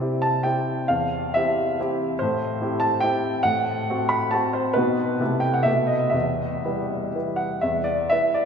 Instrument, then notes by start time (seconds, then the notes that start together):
grand piano
Already playing: C3 C5
0.00 C4 E4 G4
0.22 A5
0.43 C4 E4 G4 G5
0.88 E2 F5
1.34 C4 E4 G4 E5
1.80 C4 E4 G4
2.19 A2 C5
2.61 C4 E4 G4
2.80 A5
3.00 C4 E4 G4 G5
3.43 A2 F#5
3.90 C4 F#4
4.09 B5
4.31 C4 F#4 A5
4.53 C5
4.73 B2 B3 D#4 F#4 B4
5.20 C3 A3 E4 A4
5.40 G5
5.54 F#5
5.63 B2 A3 F#4 E5
5.67 B4
5.87 D#5
6.10 E2 E5
6.65 G3 E4 B4
7.15 G3 E4 B4
7.36 F#5
7.61 E2 E5
7.84 D5
8.09 E4 B4 E5
8.34 D5